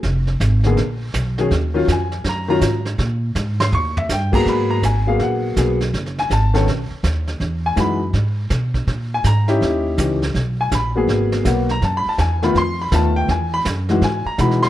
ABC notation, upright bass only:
X:1
M:4/4
L:1/8
Q:"Swing" 1/4=163
K:Ebm
V:1 name="Upright bass" clef=bass
F,,,2 A,,,2 ^A,,,2 =B,,,2 | E,,2 F,,2 G,,2 A,,2 | B,,2 A,,2 E,,2 =G,,2 | [K:G#m] G,,2 G,,,2 A,,,2 B,,,2 |
F,,,2 G,,,2 B,,, z D,,2 | E,,2 F,,2 G,,2 B,,2 | A,,2 G,,2 D,,2 C,,2 | B,,,2 A,,,2 G,,,2 B,,,2 |
F,, z E,,2 =F,,2 _E,,2 | E,,2 F,,2 G,, z B,,2 |]